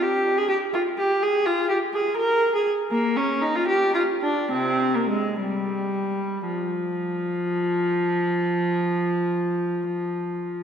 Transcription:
viola
0.02 G4
0.38 G#4
0.49 G4
0.74 F4
0.98 G4
1.23 G#4
1.46 F4
1.69 G4
1.94 G#4
2.17 A#4
2.55 G#4
2.91 A#3
3.17 C#4
3.42 D#4
3.55 F4
3.68 G4
3.94 F4
4.23 D4
4.51 C3 C4
4.96 A#3
5.10 G#3
5.41 G3
6.46 F3

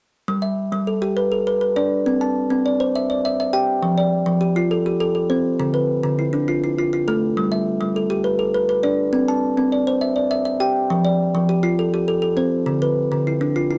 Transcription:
kalimba
0.28 G3
0.42 E5
0.72 G3
0.87 A4
1.02 G4
1.17 B4
1.32 A4
1.47 B4
1.61 B4
1.76 D4 D5
2.06 C4
2.21 A5
2.50 C4
2.66 D5
2.80 C5
2.96 E5
3.10 D5
3.25 E5
3.40 E5
3.53 G4 G5
3.83 F3
3.98 D5
4.26 F3
4.41 G4
4.56 F4
4.71 A4
4.86 G4
5.00 A4
5.15 A4
5.30 C4 C5
5.60 D3
5.74 B4
6.03 D3
6.19 E4
6.33 D4
6.48 F4
6.64 E4
6.78 F4
6.93 F4
7.08 A3 A4
7.37 G3
7.52 E5
7.81 G3
7.96 A4
8.10 G4
8.24 B4
8.39 A4
8.54 B4
8.69 B4
8.83 D4 D5
9.13 C4
9.28 A5
9.57 C4
9.72 D5
9.87 C5
10.01 E5
10.16 D5
10.31 E5
10.45 E5
10.60 G4 G5
10.90 F3
11.05 D5
11.35 F3
11.49 G4
11.63 F4
11.79 A4
11.94 G4
12.08 A4
12.22 A4
12.37 C4 C5
12.66 D3
12.82 B4
13.12 D3
13.27 E4
13.41 D4
13.56 F4
13.71 E4

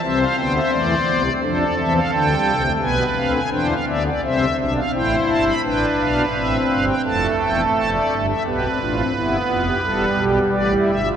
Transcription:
pipe organ
0.02 C2 C3 C4 C5 E5
0.20 F5
0.37 D2 D3 B3 G5
0.55 E5
0.72 E2 E3 A3 D5
1.07 C2 C3 B3
1.25 C4
1.42 F2 F3 D4 A4 C5
1.60 D5
1.78 E2 E3 C4 E5
1.95 F5
2.12 D2 D3 D4 G5
2.31 G3
2.47 C2 C3
2.64 A3
2.81 B1 B2 B3 B4 G#5
3.16 D2 D3 C4 F5
3.34 G#5
3.51 E2 E3 D4 C5 G5
3.69 F5
3.87 D2 D3 B3 D5 E5
4.06 D5
4.23 C2 C3 C4 C5 E5
4.58 B1 B2 D4 E5
4.76 F5
4.93 A1 A2 E4 C5 G5
5.29 G1 G2 A5
5.46 B5
5.63 A1 A2 D4 B4 G5
5.99 B1 B2 F5
6.34 A1 A2 C4 E5
6.69 G1 G2 F5
6.86 G5
7.04 F1 F2 A3 A4 A5
7.39 E1 E2 G5
7.74 F1 F2 A5
7.92 D5
8.10 G1 G2
8.28 E5
8.45 B1 B2 B3 G4 B4
8.63 C4
8.80 A1 A2 D4 F4
8.97 C4
9.14 G1 G2 B3 E4
9.49 F1 F2 F4
9.66 G4
9.83 E1 E2 G3 A4
10.17 B1 B2 G4
10.51 A1 A2 B4 D5
10.69 E4
10.87 G1 G2 E5
11.04 F4

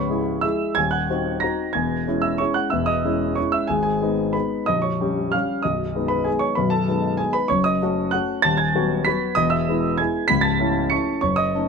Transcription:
grand piano
Already playing: C#1 C#2 C#5 C#6
0.10 G#3 E4 G#4
0.41 G#3 E4 G#4 E5 E6
0.75 D#1 D#2 G#5 G#6
0.91 F#5 F#6
1.10 C4 D#4 F#4
1.40 C4 D#4 F#4 A#5 A#6
1.73 E1 E2 G#5 G#6
2.07 G#3 C#4 E4
2.22 E5 E6
2.38 G#3 C#4 E4 C#5 C#6
2.54 F#5 F#6
2.70 E1 E2 E5 E6
2.86 D#5 D#6
3.05 G#3 C#4 E4
3.35 G#3 C#4 E4 C#5 C#6
3.52 E5 E6
3.67 G#1 G#2 G#4 G#5
3.83 G#4 G#5
4.01 G#3 B3 D#4
4.33 G#3 B3 D#4 B4 B5
4.66 A#0 A#1 D#5 D#6
4.82 C#5 C#6
5.01 G3 C#4 G4
5.32 G3 C#4 G4 F5 F6
5.63 B0 B1 D#5 D#6
5.95 G#3 B3 D#4
6.08 B4 B5
6.24 G#3 B3 D#4 G#4 G#5
6.39 C#5 C#6
6.55 B0 B1 B4 B5
6.70 A4 A5
6.88 G#3 B3 D#4
7.17 G#3 B3 D#4 G#4 G#5
7.33 B4 B5
7.48 F#1 F#2 C#5 C#6
7.64 D#5 D#6
7.82 A3 C#4 F#4
8.11 A3 C#4 F#4 F#5 F#6
8.42 D#1 D#2 A5 A6
8.57 G#5 G#6
8.75 F#3 B3 F#4
9.04 F#3 B3 F#4 B5 B6
9.35 E1 E2 D#5 D#6
9.50 E5 E6
9.69 G#3 B3 E4
9.98 G#3 B3 E4 G#5 G#6
10.28 C#1 C#2 B5 B6
10.41 A5 A6
10.59 A3 C#4 E4
10.90 A3 C#4 E4 C#6 C#7
11.21 F#1 F#2 C#5 C#6
11.36 D#5 D#6
11.55 A3 C#4 D#4

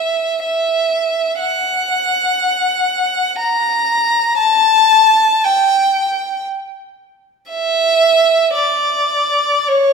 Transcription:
violin
Already playing: E5
0.44 E5
1.40 F#5
3.39 A#5
4.38 A5
5.44 G5
7.50 E5
8.55 D5
9.68 C#5

